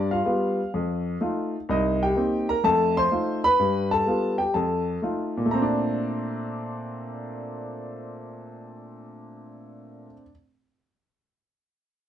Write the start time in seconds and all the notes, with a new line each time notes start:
Already playing: G2 D5
0.11 F4 F5
0.25 G3 B3 F4
0.74 F2
1.21 A3 D#4 F4
1.69 C2 D#4 D#5
2.03 G4 G5
2.16 A#3 C4 D#4
2.49 A#4 A#5
2.64 F2 A3 A4 A5
2.97 C5 C6
3.12 A3 D#4 F4
3.44 B4 B5
3.59 G2
3.91 A4 A5
4.07 G3 B3 F4
4.38 G4 G5
4.54 F2 A4 A5
5.02 A3 D#4 F4
5.37 A#2
5.46 A3
5.51 C4 A#5
5.62 D4